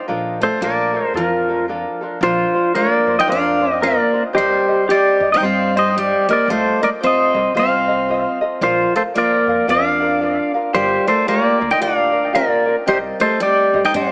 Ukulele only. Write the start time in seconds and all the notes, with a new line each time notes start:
0.08 D4 F4 A4 A#4
0.40 D4 F4 A4
0.61 D4 F4 A4 A#4
0.93 D4 F4 A4
1.15 D4 F4 A4 A#4
1.49 D4 F4 A4
1.68 D4 F4 A4 A#4
2.01 D4 F4 A4
2.21 D4 F4 A#4 C5
2.55 D4 F4 C5
2.75 D4 F4 A#4 C5
3.08 D4 F4 C5
3.27 D4 F4 A#4 C5
3.61 D4 F4 C5
3.80 D4 F4 A#4 C5
4.13 D4 F4 C5
4.33 C4 G4 C5 D#5
4.68 C4 G4 D#5
4.89 C4 G4 C5 D#5
5.22 C4 G4 D#5
5.41 C4 G4 C5 D#5
5.75 C4 G4 D#5
5.95 C4 G4 C5 D#5
6.29 C4 G4 D#5
6.48 F4 A4 C5 D#5
6.81 F4 A4 D#5
7.01 F4 A4 C5 D#5
7.34 F4 A4 D#5
7.54 F4 A4 C5 D#5
7.88 F4 A4 D#5
8.08 F4 A4 C5 D#5
8.41 F4 A4 D#5
8.61 F4 A#4 D5 F5
8.95 F4 A#4 F5
9.14 F4 A#4 D5 F5
9.48 F4 A#4 F5
9.67 F4 A#4 D5 F5
10.01 F4 A#4 F5
10.20 F4 A#4 D5 F5
10.54 F4 A#4 F5
10.73 F4 G4 A#4 D5
11.06 F4 A#4 D5
11.27 F4 G4 A#4 D5
11.59 F4 A#4 D5
11.80 F4 G4 A#4 D5
12.12 F4 A#4 D5
12.33 F4 G4 A#4 D5
12.66 F4 A#4 D5
12.86 C4 G4 C5 D#5
13.21 C4 G4 D#5
13.40 C4 G4 C5 D#5
13.74 C4 G4 D#5
13.95 C4 G4 C5 D#5